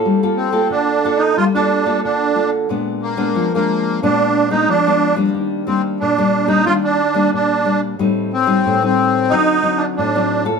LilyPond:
<<
  \new Staff \with { instrumentName = "Accordion" } { \time 4/4 \key g \minor \tempo 4 = 90 r8 c'8 d'8. ees'16 f'16 d'8. d'8. r16 | r8 bes8. bes8. d'8. ees'16 d'8. r16 | r8 c'8 d'8. ees'16 f'16 d'8. d'8. r16 | r8 c'8. c'8. ees'8. d'16 d'8. r16 | }
  \new Staff \with { instrumentName = "Nylon-string guitar" } { \time 4/4 \key g \minor << { <bes f' a'>16 <bes f' a'>8 <bes f' a'>8. <bes f' a'>8. <bes f' a'>8 <bes f' a'>8. <bes f' a'>8 | <aes ces' d'>8. <aes ces' d'>8 <aes d'>8. <aes ces' d'>8. <aes ces' d'>8 <aes ces' d'>8 <g bes d'>16~ | <g bes d'>8 <g bes d'>8. <g bes d'>8 <g bes d'>16 <g bes d'>8 r16 <g bes d'>8. <g bes d'>8 | <g c' ees'>8 r16 <g c' ees'>8 <g c' ees'>8. <fis c' ees'>8 <fis c' ees'>8. <fis c' ees'>8 <bes f' a'>16 | } \\ { g4 d4 g4 d4 | bes,4 f4 bes,4 f4 | ees4 bes,4 ees4 bes,4 | a,4 a,4 d4 a,4 | } >> }
>>